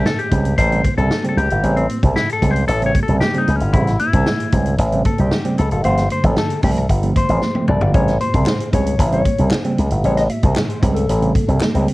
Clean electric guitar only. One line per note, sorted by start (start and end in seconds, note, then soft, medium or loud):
0.06 0.19 A4 medium
0.19 0.59 G4 medium
0.58 0.97 C5 loud
0.98 1.28 A4 medium
1.29 1.36 A4 medium
1.38 1.78 G4 medium
1.77 2.01 C4 medium
2.16 2.32 E4 loud
2.33 2.51 A4 loud
2.51 2.67 C5 loud
2.68 2.84 A4 loud
2.86 3.02 C#5 medium
3.03 3.20 A4 medium
3.20 3.37 G4 medium
3.38 3.56 D#4 medium
3.56 3.74 C#4 medium
3.73 3.98 E4 medium
4.00 4.75 E4 medium
5.06 5.20 A4 medium
5.20 5.59 G4 medium
5.59 5.71 A4 medium
5.72 5.85 A4 medium
5.85 6.11 C5 medium
6.12 6.25 C5 medium
6.25 6.37 A4 medium
6.38 6.64 A4 medium
6.64 6.69 G4 medium
6.78 7.16 A4 medium
7.17 7.68 C5 medium
7.69 7.93 D5 medium
7.95 8.20 C#5 loud
8.21 8.69 C5 medium
8.74 9.12 C#5 loud
9.14 9.49 C#5 medium
9.49 9.62 C5 medium
10.06 10.17 C#5 loud
10.17 10.22 D#5 medium
10.30 10.43 E5 loud
10.43 10.57 D#5 loud
10.57 10.69 C#5 loud
10.69 10.82 C5 medium
10.82 10.96 C#5 medium
10.94 11.70 A4 medium